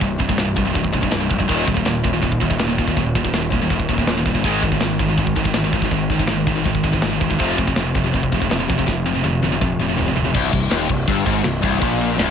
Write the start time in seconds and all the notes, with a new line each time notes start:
0.00 C1 C2 G2, kick, open hi-hat
0.18 C2 G2, kick
0.29 C2 G2, kick
0.37 C1 C2 G2, snare, open hi-hat
0.56 C1 C2 G2, kick
0.65 C2 G2
0.73 C1 C2 G2, kick, open hi-hat
0.84 kick
0.92 C1 C2 G2, kick
1.01 C2 G2, kick
1.11 C1 C2 G2, snare, open hi-hat
1.19 C2 G2
1.30 F1 C2 G2, kick
1.38 C2 G2, kick
1.48 D#1 D#2 A#2 D#3, kick, open hi-hat
1.66 D#1 D#2 A#2, kick
1.74 D#2 A#2, kick
1.85 D#1 D#2 A#2, snare, open hi-hat
2.04 D#1 D#2 A#2, kick
2.13 D#2 A#2
2.22 D#1 D#2 A#2, kick, open hi-hat
2.32 kick
2.41 D#1 D#2 A#2, kick
2.50 D#2 A#2, kick
2.59 D#1 D#2 A#2, snare, open hi-hat
2.69 D#2 A#2
2.78 D#1 D#2 A#2, kick
2.88 D#2 A#2, kick
2.96 D#1 D#2 A#2, kick, open hi-hat
3.15 D#2 A#2, kick
3.24 D#2 A#2, kick
3.33 D#1 D#2 A#2, snare, open hi-hat
3.50 D#1 D#2 A#2, kick
3.61 D#2 A#2
3.70 D#1 D#2 A#2, kick, open hi-hat
3.80 kick
3.89 D#1 D#2 A#2, kick
3.98 D#2 A#2, kick
4.07 D#1 D#2 A#2, snare, open hi-hat
4.17 D#2 A#2
4.26 G1 D#2 A#2, kick
4.35 D#2 A#2, kick
4.44 G#1 G#2 D#3 G#3, kick, open hi-hat
4.63 G#1 G#2 D#3, kick
4.72 G#2 D#3, kick
4.80 G#1 G#2 D#3, snare, open hi-hat
4.99 G#1 G#2 D#3, kick
5.08 G#2 D#3
5.17 G#1 G#2 D#3, kick, open hi-hat
5.27 kick
5.36 G#1 G#2 D#3, kick
5.44 G#2 D#3, kick
5.54 G#1 G#2 D#3, snare, open hi-hat
5.64 G#2 D#3
5.73 G#1 G#2 D#3, kick
5.82 G#2 D#3, kick
5.90 G#1 G#2 D#3, kick, open hi-hat
6.10 G#2 D#3, kick
6.19 G#2 D#3, kick
6.27 G#1 G#2 D#3, snare, open hi-hat
6.46 G#1 G#2 D#3, kick
6.56 G#2 D#3
6.64 G#1 G#2 D#3, kick, open hi-hat
6.75 kick
6.84 G#1 G#2 D#3, kick
6.92 G#2 D#3, kick
7.02 G#1 G#2 D#3, snare, open hi-hat
7.10 G#2 D#3
7.20 E1 G#2 D#3, kick
7.30 G#2 D#3, kick
7.39 F1 F2 C3 F3, kick, open hi-hat
7.58 F1 F2 C3, kick
7.67 F2 C3, kick
7.76 F1 F2 C3, snare, open hi-hat
7.95 F1 F2 C3, kick
8.04 F2 C3
8.13 F1 F2 C3, kick, open hi-hat
8.23 kick
8.32 F1 F2 C3, kick
8.40 F2 C3, kick
8.50 F1 F2 C3, snare, open hi-hat
8.59 F2 C3
8.68 F1 F2 C3, kick
8.78 F2 C3, kick
8.87 F1 F2 C3, kick, snare
9.06 F2 C3
9.14 F2 C3
9.23 F1 F2 C3, high tom
9.42 F1 F2 C3, high tom
9.52 F2 C3
9.61 F1 F2 C3, kick, mid tom
9.79 F1 F2 C3
9.88 F2 C3
9.97 F1 F2 C3, floor tom
10.06 F2 C3
10.16 F1 F2 C3, floor tom
10.24 F2 C3
10.34 C1 C2, kick, crash
10.53 C1 C2, kick, ride
10.71 D#1 D#2, snare, ride
10.89 C1 C2, kick, ride
11.07 G1 G2, kick, ride
11.26 G#1 G#2, kick, ride
11.44 C1 C2, snare, ride
11.63 C1 C2, kick, ride
11.81 A#1 A#2, kick, ride
12.01 ride
12.19 C1 C2, snare, ride